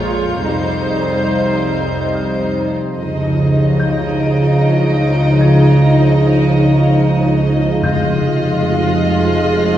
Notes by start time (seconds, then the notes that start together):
Already playing: A#1 F2 A#2 G#3 F4 G#4 C#5 F5 A#5 G6
0.45 C2 C3 G3 D#4 G4 C5 D#5
2.15 F6
2.96 C#2 C#3 F3 G#3 D#4 G#4 C#5 D#5 F5
3.79 G6 D7
5.41 G#6
6.49 C#7
7.82 F1 F2 C3 F3 G#3 D#4 F4 G#4 D#5 F6 F#6 G6